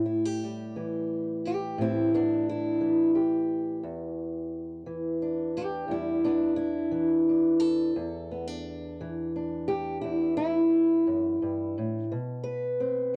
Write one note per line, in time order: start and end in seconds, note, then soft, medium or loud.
0.00 1.77 A2 medium
0.00 0.06 E4 soft
0.06 0.25 E4 soft
0.25 1.45 G4 soft
0.44 5.90 G3 soft
0.76 2.80 E3 medium
1.45 1.50 E4 medium
1.45 1.79 G4 medium
1.78 3.84 A2 medium
1.78 2.14 C4 medium
1.78 2.48 E4 medium
2.14 2.19 B3 medium
2.14 3.17 D4 medium
2.49 3.14 E4 loud
2.81 4.86 E3 medium
3.15 5.57 G4 soft
3.83 5.88 E2 medium
4.86 6.90 E3 medium
5.22 6.23 D4 soft
5.57 5.62 E4 medium
5.57 5.91 G4 medium
5.88 7.95 E2 medium
5.88 6.25 G3 medium
5.88 6.55 E4 medium
6.24 6.31 B3 medium
6.24 7.28 D4 medium
6.56 7.60 E4 medium
6.91 7.92 E3 medium
7.29 7.93 D4 soft
7.60 9.67 A4 medium
7.96 10.03 E2 medium
8.32 8.48 B3 soft
8.48 9.34 D4 soft
9.01 12.05 E3 medium
9.36 12.05 D4 soft
9.68 10.01 G4 medium
10.02 11.06 E2 medium
10.02 10.36 E4 medium
10.37 12.09 E4 loud
11.07 11.41 F#2 medium
11.42 11.75 G2 medium
11.78 12.10 A2 medium
12.12 13.16 B2 medium
12.43 13.16 B4 medium
12.80 13.16 C4 soft